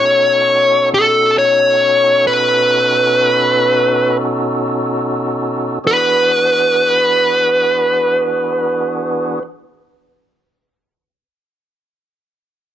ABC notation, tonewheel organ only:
X:1
M:12/8
L:1/8
Q:3/8=35
K:E
V:1 name="Tonewheel organ"
[B,,CDFA]12 | [E,B,=DFG]12 |]